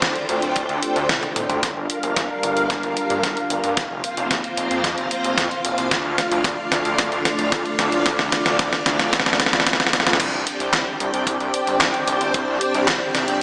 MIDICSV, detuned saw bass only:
0, 0, Header, 1, 2, 480
1, 0, Start_track
1, 0, Tempo, 535714
1, 1460, Time_signature, 4, 2, 24, 8
1, 12031, End_track
2, 0, Start_track
2, 0, Title_t, "Detuned saw bass"
2, 0, Program_c, 0, 39
2, 22, Note_on_c, 0, 38, 102
2, 120, Note_off_c, 0, 38, 0
2, 260, Note_on_c, 0, 38, 91
2, 358, Note_off_c, 0, 38, 0
2, 379, Note_on_c, 0, 26, 79
2, 478, Note_off_c, 0, 26, 0
2, 505, Note_on_c, 0, 26, 98
2, 601, Note_off_c, 0, 26, 0
2, 619, Note_on_c, 0, 38, 79
2, 718, Note_off_c, 0, 38, 0
2, 859, Note_on_c, 0, 38, 79
2, 958, Note_off_c, 0, 38, 0
2, 983, Note_on_c, 0, 36, 95
2, 1080, Note_off_c, 0, 36, 0
2, 1219, Note_on_c, 0, 26, 91
2, 1318, Note_off_c, 0, 26, 0
2, 1338, Note_on_c, 0, 38, 84
2, 1438, Note_off_c, 0, 38, 0
2, 1462, Note_on_c, 0, 31, 100
2, 1559, Note_off_c, 0, 31, 0
2, 1579, Note_on_c, 0, 31, 78
2, 1678, Note_off_c, 0, 31, 0
2, 1819, Note_on_c, 0, 31, 79
2, 1918, Note_off_c, 0, 31, 0
2, 1945, Note_on_c, 0, 31, 101
2, 2041, Note_off_c, 0, 31, 0
2, 2179, Note_on_c, 0, 31, 94
2, 2278, Note_off_c, 0, 31, 0
2, 2299, Note_on_c, 0, 31, 81
2, 2398, Note_off_c, 0, 31, 0
2, 2419, Note_on_c, 0, 31, 99
2, 2518, Note_off_c, 0, 31, 0
2, 2540, Note_on_c, 0, 31, 76
2, 2638, Note_off_c, 0, 31, 0
2, 2779, Note_on_c, 0, 43, 81
2, 2878, Note_off_c, 0, 43, 0
2, 2898, Note_on_c, 0, 31, 102
2, 2998, Note_off_c, 0, 31, 0
2, 3139, Note_on_c, 0, 31, 93
2, 3238, Note_off_c, 0, 31, 0
2, 3259, Note_on_c, 0, 43, 83
2, 3358, Note_off_c, 0, 43, 0
2, 3381, Note_on_c, 0, 29, 102
2, 3479, Note_off_c, 0, 29, 0
2, 3499, Note_on_c, 0, 29, 75
2, 3598, Note_off_c, 0, 29, 0
2, 3739, Note_on_c, 0, 29, 83
2, 3838, Note_off_c, 0, 29, 0
2, 3861, Note_on_c, 0, 29, 106
2, 3959, Note_off_c, 0, 29, 0
2, 4100, Note_on_c, 0, 29, 93
2, 4199, Note_off_c, 0, 29, 0
2, 4219, Note_on_c, 0, 41, 83
2, 4318, Note_off_c, 0, 41, 0
2, 4337, Note_on_c, 0, 41, 102
2, 4437, Note_off_c, 0, 41, 0
2, 4459, Note_on_c, 0, 29, 83
2, 4558, Note_off_c, 0, 29, 0
2, 4700, Note_on_c, 0, 29, 79
2, 4798, Note_off_c, 0, 29, 0
2, 4817, Note_on_c, 0, 41, 102
2, 4917, Note_off_c, 0, 41, 0
2, 5058, Note_on_c, 0, 27, 99
2, 5158, Note_off_c, 0, 27, 0
2, 5177, Note_on_c, 0, 36, 79
2, 5277, Note_off_c, 0, 36, 0
2, 5300, Note_on_c, 0, 38, 104
2, 5399, Note_off_c, 0, 38, 0
2, 5417, Note_on_c, 0, 38, 77
2, 5517, Note_off_c, 0, 38, 0
2, 5658, Note_on_c, 0, 38, 79
2, 5757, Note_off_c, 0, 38, 0
2, 5774, Note_on_c, 0, 38, 105
2, 5876, Note_off_c, 0, 38, 0
2, 6019, Note_on_c, 0, 38, 96
2, 6118, Note_off_c, 0, 38, 0
2, 6139, Note_on_c, 0, 38, 79
2, 6238, Note_off_c, 0, 38, 0
2, 6265, Note_on_c, 0, 38, 99
2, 6361, Note_off_c, 0, 38, 0
2, 6379, Note_on_c, 0, 38, 80
2, 6478, Note_off_c, 0, 38, 0
2, 6619, Note_on_c, 0, 26, 83
2, 6718, Note_off_c, 0, 26, 0
2, 6741, Note_on_c, 0, 38, 98
2, 6839, Note_off_c, 0, 38, 0
2, 6979, Note_on_c, 0, 38, 93
2, 7078, Note_off_c, 0, 38, 0
2, 7099, Note_on_c, 0, 26, 82
2, 7198, Note_off_c, 0, 26, 0
2, 7225, Note_on_c, 0, 38, 99
2, 7321, Note_off_c, 0, 38, 0
2, 7339, Note_on_c, 0, 38, 78
2, 7438, Note_off_c, 0, 38, 0
2, 7580, Note_on_c, 0, 38, 84
2, 7679, Note_off_c, 0, 38, 0
2, 7701, Note_on_c, 0, 38, 107
2, 7799, Note_off_c, 0, 38, 0
2, 7940, Note_on_c, 0, 38, 92
2, 8038, Note_off_c, 0, 38, 0
2, 8061, Note_on_c, 0, 26, 83
2, 8159, Note_off_c, 0, 26, 0
2, 8185, Note_on_c, 0, 26, 101
2, 8281, Note_off_c, 0, 26, 0
2, 8300, Note_on_c, 0, 38, 83
2, 8399, Note_off_c, 0, 38, 0
2, 8540, Note_on_c, 0, 38, 80
2, 8638, Note_off_c, 0, 38, 0
2, 8665, Note_on_c, 0, 38, 102
2, 8761, Note_off_c, 0, 38, 0
2, 8900, Note_on_c, 0, 26, 93
2, 8998, Note_off_c, 0, 26, 0
2, 9020, Note_on_c, 0, 38, 84
2, 9119, Note_off_c, 0, 38, 0
2, 9137, Note_on_c, 0, 36, 105
2, 9237, Note_off_c, 0, 36, 0
2, 9259, Note_on_c, 0, 36, 78
2, 9358, Note_off_c, 0, 36, 0
2, 9499, Note_on_c, 0, 36, 76
2, 9598, Note_off_c, 0, 36, 0
2, 9617, Note_on_c, 0, 36, 102
2, 9717, Note_off_c, 0, 36, 0
2, 9860, Note_on_c, 0, 36, 93
2, 9959, Note_off_c, 0, 36, 0
2, 9980, Note_on_c, 0, 36, 85
2, 10078, Note_off_c, 0, 36, 0
2, 10096, Note_on_c, 0, 36, 96
2, 10197, Note_off_c, 0, 36, 0
2, 10219, Note_on_c, 0, 36, 80
2, 10318, Note_off_c, 0, 36, 0
2, 10459, Note_on_c, 0, 31, 85
2, 10558, Note_off_c, 0, 31, 0
2, 10580, Note_on_c, 0, 36, 104
2, 10679, Note_off_c, 0, 36, 0
2, 10819, Note_on_c, 0, 36, 91
2, 10918, Note_off_c, 0, 36, 0
2, 10939, Note_on_c, 0, 31, 84
2, 11038, Note_off_c, 0, 31, 0
2, 11061, Note_on_c, 0, 36, 105
2, 11159, Note_off_c, 0, 36, 0
2, 11179, Note_on_c, 0, 36, 78
2, 11278, Note_off_c, 0, 36, 0
2, 11419, Note_on_c, 0, 36, 81
2, 11518, Note_off_c, 0, 36, 0
2, 11540, Note_on_c, 0, 36, 103
2, 11639, Note_off_c, 0, 36, 0
2, 11779, Note_on_c, 0, 36, 95
2, 11878, Note_off_c, 0, 36, 0
2, 11898, Note_on_c, 0, 31, 87
2, 11998, Note_off_c, 0, 31, 0
2, 12031, End_track
0, 0, End_of_file